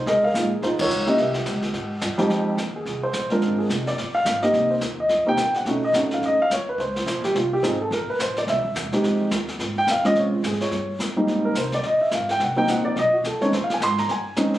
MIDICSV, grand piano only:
0, 0, Header, 1, 2, 480
1, 0, Start_track
1, 0, Key_signature, -4, "minor"
1, 0, Tempo, 280636
1, 96, Time_signature, 4, 2, 24, 8
1, 24944, End_track
2, 0, Start_track
2, 0, Title_t, "Grand piano"
2, 0, Program_c, 0, 0
2, 123, Note_on_c, 0, 75, 86
2, 132, Note_on_c, 0, 68, 66
2, 140, Note_on_c, 0, 70, 67
2, 405, Note_off_c, 0, 75, 0
2, 410, Note_off_c, 0, 70, 0
2, 412, Note_off_c, 0, 68, 0
2, 414, Note_on_c, 0, 77, 90
2, 436, Note_on_c, 0, 70, 62
2, 438, Note_on_c, 0, 68, 65
2, 598, Note_on_c, 0, 56, 50
2, 604, Note_on_c, 0, 63, 48
2, 609, Note_on_c, 0, 65, 59
2, 610, Note_on_c, 0, 58, 45
2, 845, Note_off_c, 0, 56, 0
2, 846, Note_off_c, 0, 77, 0
2, 849, Note_off_c, 0, 63, 0
2, 851, Note_off_c, 0, 58, 0
2, 851, Note_off_c, 0, 65, 0
2, 1085, Note_on_c, 0, 72, 83
2, 1105, Note_on_c, 0, 63, 64
2, 1108, Note_on_c, 0, 65, 65
2, 1171, Note_off_c, 0, 72, 0
2, 1303, Note_off_c, 0, 70, 0
2, 1304, Note_off_c, 0, 68, 0
2, 1383, Note_off_c, 0, 65, 0
2, 1388, Note_on_c, 0, 73, 96
2, 1399, Note_on_c, 0, 70, 62
2, 1409, Note_on_c, 0, 65, 67
2, 1812, Note_off_c, 0, 73, 0
2, 1821, Note_on_c, 0, 58, 68
2, 1822, Note_on_c, 0, 64, 57
2, 1827, Note_on_c, 0, 61, 63
2, 1829, Note_on_c, 0, 67, 70
2, 1854, Note_on_c, 0, 75, 76
2, 1973, Note_off_c, 0, 63, 0
2, 1994, Note_off_c, 0, 58, 0
2, 1994, Note_off_c, 0, 64, 0
2, 1997, Note_off_c, 0, 61, 0
2, 1997, Note_off_c, 0, 70, 0
2, 1998, Note_off_c, 0, 67, 0
2, 2002, Note_off_c, 0, 65, 0
2, 2035, Note_off_c, 0, 75, 0
2, 2042, Note_on_c, 0, 76, 82
2, 2064, Note_on_c, 0, 67, 59
2, 2065, Note_on_c, 0, 70, 55
2, 3396, Note_off_c, 0, 76, 0
2, 3408, Note_off_c, 0, 67, 0
2, 3408, Note_off_c, 0, 70, 0
2, 3729, Note_on_c, 0, 41, 79
2, 3742, Note_on_c, 0, 56, 63
2, 3743, Note_on_c, 0, 63, 66
2, 3744, Note_on_c, 0, 60, 72
2, 3746, Note_on_c, 0, 67, 82
2, 4366, Note_off_c, 0, 41, 0
2, 4372, Note_off_c, 0, 56, 0
2, 4373, Note_off_c, 0, 60, 0
2, 4373, Note_off_c, 0, 63, 0
2, 4374, Note_off_c, 0, 67, 0
2, 4720, Note_on_c, 0, 68, 69
2, 5154, Note_off_c, 0, 68, 0
2, 5190, Note_on_c, 0, 72, 89
2, 5628, Note_off_c, 0, 72, 0
2, 5670, Note_on_c, 0, 56, 58
2, 5672, Note_on_c, 0, 70, 76
2, 5675, Note_on_c, 0, 60, 52
2, 5678, Note_on_c, 0, 62, 58
2, 5681, Note_on_c, 0, 65, 68
2, 6109, Note_off_c, 0, 70, 0
2, 6133, Note_on_c, 0, 68, 75
2, 6294, Note_off_c, 0, 56, 0
2, 6297, Note_off_c, 0, 60, 0
2, 6298, Note_off_c, 0, 62, 0
2, 6300, Note_off_c, 0, 65, 0
2, 6319, Note_off_c, 0, 68, 0
2, 6628, Note_on_c, 0, 74, 85
2, 7066, Note_off_c, 0, 74, 0
2, 7091, Note_on_c, 0, 77, 99
2, 7537, Note_off_c, 0, 77, 0
2, 7569, Note_on_c, 0, 75, 87
2, 7575, Note_on_c, 0, 58, 65
2, 7575, Note_on_c, 0, 60, 56
2, 7577, Note_on_c, 0, 63, 55
2, 7582, Note_on_c, 0, 67, 69
2, 8015, Note_off_c, 0, 75, 0
2, 8051, Note_on_c, 0, 72, 65
2, 8205, Note_off_c, 0, 58, 0
2, 8205, Note_off_c, 0, 60, 0
2, 8206, Note_off_c, 0, 63, 0
2, 8209, Note_off_c, 0, 67, 0
2, 8236, Note_off_c, 0, 72, 0
2, 8553, Note_on_c, 0, 75, 73
2, 8988, Note_off_c, 0, 75, 0
2, 9005, Note_on_c, 0, 58, 67
2, 9005, Note_on_c, 0, 63, 66
2, 9010, Note_on_c, 0, 67, 71
2, 9012, Note_on_c, 0, 60, 69
2, 9040, Note_on_c, 0, 79, 105
2, 9179, Note_off_c, 0, 58, 0
2, 9180, Note_off_c, 0, 63, 0
2, 9182, Note_off_c, 0, 67, 0
2, 9183, Note_off_c, 0, 60, 0
2, 9471, Note_off_c, 0, 79, 0
2, 9511, Note_on_c, 0, 78, 82
2, 9693, Note_on_c, 0, 57, 61
2, 9697, Note_on_c, 0, 61, 57
2, 9697, Note_on_c, 0, 66, 66
2, 9702, Note_on_c, 0, 63, 56
2, 9945, Note_off_c, 0, 57, 0
2, 9946, Note_off_c, 0, 78, 0
2, 9947, Note_off_c, 0, 66, 0
2, 9948, Note_off_c, 0, 61, 0
2, 9950, Note_off_c, 0, 63, 0
2, 9997, Note_on_c, 0, 75, 87
2, 10104, Note_off_c, 0, 75, 0
2, 10174, Note_on_c, 0, 57, 58
2, 10179, Note_on_c, 0, 63, 56
2, 10181, Note_on_c, 0, 66, 70
2, 10185, Note_on_c, 0, 61, 57
2, 10498, Note_on_c, 0, 77, 81
2, 10660, Note_off_c, 0, 77, 0
2, 10700, Note_on_c, 0, 75, 87
2, 10877, Note_off_c, 0, 57, 0
2, 10880, Note_off_c, 0, 63, 0
2, 10880, Note_off_c, 0, 66, 0
2, 10882, Note_off_c, 0, 61, 0
2, 10950, Note_off_c, 0, 75, 0
2, 10979, Note_on_c, 0, 77, 105
2, 11141, Note_off_c, 0, 77, 0
2, 11168, Note_on_c, 0, 73, 80
2, 11424, Note_off_c, 0, 73, 0
2, 11442, Note_on_c, 0, 71, 78
2, 11612, Note_off_c, 0, 71, 0
2, 11631, Note_on_c, 0, 72, 83
2, 12330, Note_off_c, 0, 72, 0
2, 12392, Note_on_c, 0, 67, 81
2, 12566, Note_off_c, 0, 67, 0
2, 12604, Note_on_c, 0, 65, 73
2, 12862, Note_off_c, 0, 65, 0
2, 12884, Note_on_c, 0, 67, 79
2, 13046, Note_on_c, 0, 60, 68
2, 13051, Note_on_c, 0, 65, 62
2, 13051, Note_on_c, 0, 68, 73
2, 13053, Note_off_c, 0, 67, 0
2, 13053, Note_on_c, 0, 63, 64
2, 13081, Note_off_c, 0, 68, 0
2, 13107, Note_on_c, 0, 68, 74
2, 13302, Note_off_c, 0, 60, 0
2, 13305, Note_off_c, 0, 65, 0
2, 13306, Note_off_c, 0, 63, 0
2, 13354, Note_off_c, 0, 68, 0
2, 13369, Note_on_c, 0, 69, 81
2, 13467, Note_off_c, 0, 69, 0
2, 13492, Note_on_c, 0, 69, 55
2, 13526, Note_off_c, 0, 69, 0
2, 13565, Note_on_c, 0, 70, 75
2, 13823, Note_off_c, 0, 70, 0
2, 13850, Note_on_c, 0, 71, 83
2, 14016, Note_off_c, 0, 71, 0
2, 14054, Note_on_c, 0, 72, 85
2, 14307, Note_off_c, 0, 72, 0
2, 14335, Note_on_c, 0, 74, 76
2, 14499, Note_off_c, 0, 74, 0
2, 14532, Note_on_c, 0, 76, 90
2, 15272, Note_on_c, 0, 60, 55
2, 15279, Note_on_c, 0, 63, 61
2, 15283, Note_on_c, 0, 67, 71
2, 15287, Note_on_c, 0, 56, 59
2, 15401, Note_off_c, 0, 76, 0
2, 15894, Note_off_c, 0, 60, 0
2, 15897, Note_off_c, 0, 63, 0
2, 15899, Note_off_c, 0, 67, 0
2, 15901, Note_off_c, 0, 56, 0
2, 16730, Note_on_c, 0, 79, 100
2, 16896, Note_off_c, 0, 79, 0
2, 16950, Note_on_c, 0, 77, 85
2, 17183, Note_on_c, 0, 60, 57
2, 17184, Note_on_c, 0, 56, 69
2, 17185, Note_on_c, 0, 61, 57
2, 17189, Note_on_c, 0, 65, 77
2, 17195, Note_off_c, 0, 77, 0
2, 17206, Note_on_c, 0, 75, 94
2, 17374, Note_off_c, 0, 75, 0
2, 17408, Note_on_c, 0, 73, 73
2, 17659, Note_off_c, 0, 65, 0
2, 17664, Note_off_c, 0, 73, 0
2, 17685, Note_on_c, 0, 65, 66
2, 17810, Note_off_c, 0, 56, 0
2, 17810, Note_off_c, 0, 60, 0
2, 17811, Note_off_c, 0, 61, 0
2, 17854, Note_off_c, 0, 65, 0
2, 17889, Note_on_c, 0, 68, 75
2, 18145, Note_off_c, 0, 68, 0
2, 18152, Note_on_c, 0, 73, 83
2, 18767, Note_off_c, 0, 73, 0
2, 19096, Note_on_c, 0, 55, 62
2, 19099, Note_on_c, 0, 44, 71
2, 19105, Note_on_c, 0, 58, 58
2, 19105, Note_on_c, 0, 60, 55
2, 19106, Note_on_c, 0, 63, 67
2, 19585, Note_on_c, 0, 70, 82
2, 19727, Note_off_c, 0, 55, 0
2, 19728, Note_off_c, 0, 44, 0
2, 19732, Note_off_c, 0, 58, 0
2, 19732, Note_off_c, 0, 60, 0
2, 19732, Note_off_c, 0, 63, 0
2, 19765, Note_off_c, 0, 70, 0
2, 19802, Note_on_c, 0, 72, 79
2, 20062, Note_off_c, 0, 72, 0
2, 20086, Note_on_c, 0, 74, 93
2, 20256, Note_off_c, 0, 74, 0
2, 20298, Note_on_c, 0, 75, 77
2, 20550, Note_on_c, 0, 76, 76
2, 20551, Note_off_c, 0, 75, 0
2, 20727, Note_off_c, 0, 76, 0
2, 20778, Note_on_c, 0, 77, 76
2, 21032, Note_off_c, 0, 77, 0
2, 21054, Note_on_c, 0, 79, 96
2, 21220, Note_off_c, 0, 79, 0
2, 21262, Note_on_c, 0, 78, 78
2, 21486, Note_on_c, 0, 54, 69
2, 21490, Note_on_c, 0, 58, 57
2, 21493, Note_on_c, 0, 60, 64
2, 21497, Note_on_c, 0, 63, 73
2, 21514, Note_off_c, 0, 78, 0
2, 21516, Note_on_c, 0, 79, 100
2, 21692, Note_off_c, 0, 79, 0
2, 21714, Note_on_c, 0, 78, 88
2, 21976, Note_on_c, 0, 74, 86
2, 21980, Note_off_c, 0, 78, 0
2, 22125, Note_off_c, 0, 54, 0
2, 22127, Note_off_c, 0, 58, 0
2, 22128, Note_off_c, 0, 60, 0
2, 22131, Note_off_c, 0, 63, 0
2, 22162, Note_off_c, 0, 74, 0
2, 22216, Note_on_c, 0, 75, 96
2, 22469, Note_on_c, 0, 66, 62
2, 22472, Note_off_c, 0, 75, 0
2, 22649, Note_off_c, 0, 66, 0
2, 22688, Note_on_c, 0, 69, 66
2, 22939, Note_on_c, 0, 56, 59
2, 22947, Note_on_c, 0, 73, 96
2, 22948, Note_off_c, 0, 69, 0
2, 22948, Note_on_c, 0, 60, 60
2, 22951, Note_on_c, 0, 61, 55
2, 22961, Note_on_c, 0, 63, 66
2, 23111, Note_off_c, 0, 56, 0
2, 23116, Note_off_c, 0, 60, 0
2, 23117, Note_off_c, 0, 61, 0
2, 23122, Note_off_c, 0, 63, 0
2, 23129, Note_off_c, 0, 73, 0
2, 23159, Note_on_c, 0, 72, 81
2, 23300, Note_off_c, 0, 72, 0
2, 23327, Note_on_c, 0, 77, 80
2, 23465, Note_off_c, 0, 77, 0
2, 23501, Note_on_c, 0, 80, 88
2, 23632, Note_off_c, 0, 80, 0
2, 23663, Note_on_c, 0, 84, 106
2, 23918, Note_off_c, 0, 84, 0
2, 23931, Note_on_c, 0, 82, 94
2, 24103, Note_off_c, 0, 82, 0
2, 24138, Note_on_c, 0, 80, 78
2, 24588, Note_on_c, 0, 56, 61
2, 24588, Note_on_c, 0, 63, 76
2, 24590, Note_on_c, 0, 60, 62
2, 24591, Note_on_c, 0, 61, 64
2, 24833, Note_off_c, 0, 80, 0
2, 24944, Note_off_c, 0, 56, 0
2, 24944, Note_off_c, 0, 60, 0
2, 24944, Note_off_c, 0, 61, 0
2, 24944, Note_off_c, 0, 63, 0
2, 24944, End_track
0, 0, End_of_file